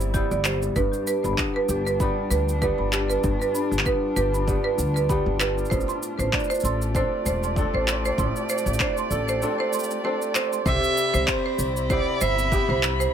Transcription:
Already playing: upright bass G1, kora C3 G3 B3 E4, string quartet C3 G3 E4
0.01 cabasa
0.14 kora G3 B3 E4, marimba G4, kick, cabasa
0.31 upright bass G1, marimba D5, cabasa
0.45 kora G3, marimba C5, clap, cabasa
0.62 cabasa
0.76 upright bass G1, kora G2, marimba B4, kick, cabasa
0.93 cabasa
1.07 string quartet D4, marimba B4, cabasa
1.24 upright bass G1, marimba B5, cabasa
1.38 kora B3, kick, clap, cabasa
1.47 string quartet F4
1.56 marimba B4
1.69 upright bass G1, kora G4, cabasa
1.87 marimba B4, cabasa
2.00 kora G3 B3 G4, marimba B5, kick, cabasa
2.31 upright bass D2, marimba B4, cabasa
2.49 cabasa
2.62 kora G3 B3 G4, marimba B4, kick, cabasa
2.79 upright bass G1, marimba B5
2.93 kora G3, clap, cabasa
3.10 marimba B4, cabasa
3.23 upright bass G1, kora G2, kick, cabasa
3.42 marimba B4, cabasa
3.55 marimba B5, cabasa
3.71 upright bass G1, cabasa
3.79 clap
3.86 kora B3, marimba B4, kick, cabasa
4.16 upright bass G1, kora G4, marimba B4, cabasa
4.34 marimba B5, cabasa
4.47 kora G3 B3 G4, kick, cabasa
4.64 marimba B4
4.78 upright bass D2, cabasa
4.96 marimba B4, cabasa
5.09 kora G3 B3 G4, marimba B5, kick, cabasa
5.26 upright bass G1
5.40 kora G3, marimba B4, clap, cabasa
5.58 cabasa
5.65 cabasa
5.70 upright bass A1, kora A2, string quartet A3, marimba C5, kick, cabasa
5.80 cabasa
5.88 marimba C6, cabasa
6.03 cabasa
6.19 upright bass A1, marimba C5, cabasa
6.33 kora D4, kick, clap, cabasa
6.39 cabasa
6.44 cabasa
6.50 marimba C5, cabasa
6.54 string quartet G4, cabasa
6.60 upright bass A1, kora A4, cabasa
6.65 string quartet D5, marimba C6, cabasa
6.82 cabasa
6.95 kora C4 D4 A4, marimba C5, kick, cabasa
7.25 upright bass E1, marimba C5, cabasa
7.43 marimba C6, cabasa
7.56 kora C4 D4 A4, kick, cabasa
7.74 upright bass A1, marimba C5
7.88 kora C4, clap, cabasa
8.05 marimba C5, cabasa
8.18 upright bass A1, kora A2, marimba C6, kick, cabasa
8.36 cabasa
8.49 marimba C5, cabasa
8.58 cabasa
8.66 upright bass A1, cabasa
8.74 cabasa
8.80 kora D4, marimba C5, kick, clap, cabasa
8.97 marimba C6, cabasa
9.10 upright bass A1, kora A4, cabasa
9.29 marimba C5, cabasa
9.42 kora C4 D4 A4, cabasa
9.60 marimba C5
9.73 marimba C6, cabasa
9.79 cabasa
9.84 cabasa
9.91 cabasa
10.04 kora C4 D4 A4, marimba C5
10.22 cabasa
10.35 kora C4, marimba C5, clap, cabasa
10.53 marimba C6, cabasa
10.66 upright bass C2, kora C3 G4, string quartet C3, marimba C5, violin E5, kick, cabasa
10.84 cabasa
10.94 string quartet B5, cabasa
11.14 upright bass C2, marimba C5, cabasa
11.28 violin C5, kick, clap, cabasa
11.46 marimba C5
11.58 upright bass C2, string quartet E4, cabasa
11.77 cabasa
11.90 kora B3 E4 G4, marimba C5, violin D5, kick, cabasa
12.21 upright bass G1, marimba C5, violin E5, cabasa
12.39 cabasa
12.52 kora B3 E4 G4, kick, cabasa
12.69 upright bass C2, marimba C5
12.83 clap, cabasa
13.00 marimba C5, cabasa

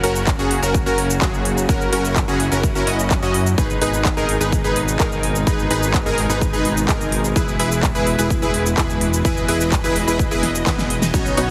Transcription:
Already playing: string section C#3 F#3 A#3 F#4
0.04 analog synth bass F#1, supersaw synth C#4 F#4 A#4, open hi-hat
0.16 cabasa
0.27 kick, clap, cabasa
0.39 analog synth bass F#1, supersaw synth C#4 F#4 G#4, cabasa
0.51 open hi-hat
0.63 analog synth bass F#1, supersaw synth C#4 F#4 A#4, cabasa
0.74 kick, cabasa
0.86 analog synth bass F#1, supersaw synth C#4 F#4 A#4, cabasa
0.98 open hi-hat
1.10 cabasa
1.22 analog synth bass F#1, supersaw synth C#4 F#4 G#4, kick, clap, cabasa
1.34 cabasa
1.45 open hi-hat
1.58 cabasa
1.69 analog synth bass F#1, supersaw synth C#4 F#4 A#4, string section E4, kick, cabasa
1.81 cabasa
1.93 analog synth bass F#1, supersaw synth C#4 F#4 A#4, open hi-hat
2.05 cabasa
2.16 kick, clap, cabasa
2.28 analog synth bass F#1, supersaw synth C#4 F#4 G#4, cabasa
2.40 open hi-hat
2.52 analog synth bass F#1, supersaw synth C#4 F#4 A#4, cabasa
2.63 kick, cabasa
2.75 analog synth bass F#1, supersaw synth C#4 F#4 A#4, cabasa
2.87 analog synth bass F#1, supersaw synth C#4 F#4 D#5, open hi-hat
2.99 cabasa
3.11 kick, clap, cabasa
3.23 analog synth bass F#2, supersaw synth C#4 F#4 D#5, cabasa
3.34 open hi-hat
3.47 cabasa
3.58 analog synth bass G#1, string section B2 D#3 G#3 D#4, supersaw synth D#4 G#4 B4, kick, cabasa
3.70 cabasa
3.82 analog synth bass G#1, supersaw synth D#4 G#4 B4, open hi-hat
3.94 cabasa
4.05 kick, clap, cabasa
4.17 analog synth bass G#1, supersaw synth D#4 G#4 A#4, cabasa
4.29 open hi-hat
4.41 analog synth bass G#1, supersaw synth D#4 G#4 B4, cabasa
4.52 kick, cabasa
4.64 analog synth bass G#1, supersaw synth D#4 G#4 B4, cabasa
4.76 open hi-hat
4.88 cabasa
5.00 analog synth bass G#1, supersaw synth D#4 G#4 A#4, kick, clap, cabasa
5.12 cabasa
5.23 open hi-hat
5.36 cabasa
5.47 analog synth bass G#1, supersaw synth D#4 G#4 B4, kick, cabasa
5.59 cabasa
5.71 analog synth bass G#1, supersaw synth D#4 G#4 B4, open hi-hat
5.83 cabasa
5.94 kick, clap, cabasa
6.06 analog synth bass G#1, supersaw synth D#4 G#4 A#4, cabasa
6.18 open hi-hat
6.30 analog synth bass G#1, supersaw synth D#4 G#4 B4, cabasa
6.41 kick, cabasa
6.53 analog synth bass G#1, supersaw synth D#4 G#4 B4, cabasa
6.65 open hi-hat
6.77 cabasa
6.89 analog synth bass G#1, supersaw synth D#4 G#4 A#4, kick, clap, cabasa
7.01 cabasa
7.12 open hi-hat
7.25 cabasa
7.36 analog synth bass E1, string section E3 E4, supersaw synth E4 G#4 B4, kick, cabasa
7.48 cabasa
7.60 analog synth bass E1, supersaw synth E4 G#4 B4, open hi-hat
7.72 cabasa
7.83 kick, clap, cabasa
7.95 analog synth bass E1, supersaw synth E4 G#4 B4, cabasa
8.07 open hi-hat
8.19 analog synth bass E1, supersaw synth E4 G#4 B4, cabasa
8.30 kick, cabasa
8.42 analog synth bass E1, supersaw synth E4 G#4 B4, cabasa
8.54 open hi-hat
8.66 cabasa
8.78 analog synth bass E1, supersaw synth E4 G#4 B4, kick, clap, cabasa
8.90 cabasa
9.01 open hi-hat
9.14 cabasa
9.25 analog synth bass E1, supersaw synth E4 G#4 B4, string section D#5, kick, cabasa
9.37 cabasa
9.48 analog synth bass E1, supersaw synth E4 G#4 B4, open hi-hat
9.61 cabasa
9.72 kick, clap, cabasa
9.84 analog synth bass E1, supersaw synth E4 G#4 B4, cabasa
9.96 open hi-hat
10.08 analog synth bass E1, supersaw synth E4 G#4 B4, cabasa
10.19 kick, swell, cabasa
10.31 analog synth bass E1, supersaw synth E4 G#4 B4, cabasa
10.43 snare, open hi-hat
10.55 cabasa
10.67 analog synth bass E1, supersaw synth E4 G#4 B4, kick, snare, clap, cabasa
10.78 snare, cabasa
10.90 open hi-hat
11.02 snare, cabasa
11.14 analog synth bass B1, string section C#3 F#3 B3, supersaw synth B3 C#4 D#4 F#4 C#5, kick, crash, cabasa
11.26 cabasa
11.37 analog synth bass B1, supersaw synth B3 C#4 D#4 F#4 C#5, open hi-hat, ride

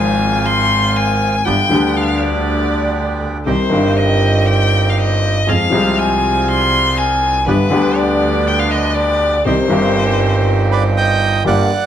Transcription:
Already playing: grand piano G#1 G#2 F3 G#3 C4 G#4, double bass G#1, bandoneon C4 F4 G#4, violin G#5
0.46 violin C6
0.96 violin G#5
1.45 grand piano G1 G2 D3 G3 B3 G4, double bass G1, bandoneon B3 D4 G4, violin G5
1.70 double bass D2, grand piano D2 D3 G3 B3 G4, bandoneon B3 D4 G4
1.96 violin F5
2.20 violin D5
3.46 grand piano C2 C3 D#3 G3 C4 G4, double bass C2, bandoneon C4 D#4 G4, violin C5
3.69 double bass G1, grand piano G1 G2 D#3 G3 C4, bandoneon C4 D#4 G4
3.74 grand piano G4
3.97 violin D#5
4.46 violin G5
4.89 violin F5
4.99 violin D#5
5.47 grand piano F2 F3 G#3 C4 G#4, double bass F2, bandoneon C4 F4 G#4, violin F5
5.70 grand piano C2 C3 F3 G#3 C4 G#4, double bass C2, bandoneon C4 F4 G#4
5.99 violin G#5
6.48 violin C6
6.97 violin G#5
7.46 double bass G1, grand piano G1 G2 D3 G3 B3 G4, bandoneon B3 D4 G4, violin B4
7.70 grand piano D2 D3 G3 B3 G4, double bass D2, bandoneon B3 D4 G4
7.98 violin D5
8.47 violin G5
8.59 violin F5
8.70 violin D#5
8.94 violin D5
9.45 grand piano C2 C3 D#3 G3 C4 G4, double bass C2, bandoneon C4 D#4 G4, violin C5
9.68 grand piano G1 G2 D#3 G3 C4, double bass G1, bandoneon C4 D#4 G4
9.72 grand piano G4
10.72 bandoneon B4 D5
10.97 bandoneon D#5 G5
11.44 grand piano G1 G2 D3 G3 A#3 G4, double bass G1, bandoneon A#3 D4 G4 D5 F#5

